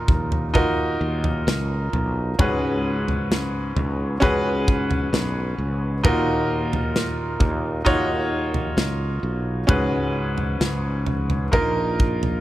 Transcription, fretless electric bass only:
0.08 0.97 D#2 medium
1.01 1.44 D#2 loud
1.47 1.90 C#2 loud
1.93 2.36 B1 loud
2.39 3.72 C#2 loud
3.76 4.19 C#2 loud
4.22 5.09 C#2 loud
5.13 5.55 B1 loud
5.58 6.01 C#2 loud
6.04 7.37 D#2 loud
7.40 7.82 D#2 loud
7.86 8.73 D#2 loud
8.77 9.20 C#2 loud
9.23 9.66 B1 loud
9.69 10.56 C#2 loud
10.60 11.49 C#2 loud
11.53 12.41 A#1 loud

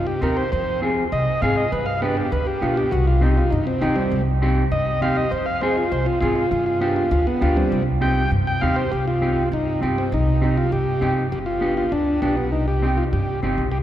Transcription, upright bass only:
0.22 0.46 D#2 medium
0.52 1.00 F2 medium
1.12 1.24 C2 medium
1.42 1.66 G#2 medium
1.72 2.20 G2 loud
2.32 2.44 D2 medium
2.62 2.86 B2 medium
2.92 3.40 C2 medium
3.52 3.64 G2 loud
3.83 4.06 D#2 medium
4.12 4.60 C2 medium
4.71 4.84 G2 medium
5.02 5.26 D#2 medium
5.32 5.80 F2 medium
5.92 6.04 C2 medium
6.22 6.46 G#2 medium
6.52 7.00 G2 medium
7.11 7.23 D2 loud
7.42 7.66 D2 medium
7.72 8.20 C2 medium
8.31 8.44 G2 medium
8.62 8.86 D#2 medium
8.92 9.40 C2 medium
9.52 9.76 G2 medium
9.82 10.14 G2 medium
10.12 10.60 C2 loud
10.72 10.96 G2 medium
11.02 11.34 G2 medium
11.32 11.80 G1 medium
11.92 12.16 D2 medium
12.22 12.52 B1 medium
12.52 13.00 C2 medium
13.12 13.36 G2 medium
13.42 13.56 G1 medium
13.58 13.72 B1 medium
13.72 13.83 C2 medium

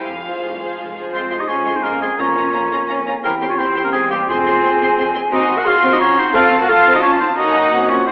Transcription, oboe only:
1.13 1.42 C5 medium
1.40 1.49 D#5 medium
1.48 1.77 C#5 medium
1.75 1.85 C5 medium
1.83 2.01 A#4 medium
2.02 2.22 G#4 medium
2.20 3.07 C#5 medium
3.24 3.36 A#4 medium
3.50 3.59 C#5 medium
3.58 3.84 C5 medium
3.84 3.88 A#4 medium
3.92 4.10 G#4 medium
4.10 4.28 G4 medium
4.29 5.13 C5 medium
5.32 5.60 D#5 medium
5.58 5.66 F#5 medium
5.67 5.92 F5 medium
5.93 5.96 D#5 medium
6.01 6.20 C#5 loud
6.19 6.35 C5 medium
6.35 6.47 F5 medium
6.62 6.71 F#5 medium
6.69 6.95 F5 loud
6.96 6.99 D#5 medium
7.03 7.11 C#5 medium
7.20 7.28 C5 medium
7.37 7.90 D#5 medium
7.89 8.06 C#5 medium
8.07 8.12 C5 medium

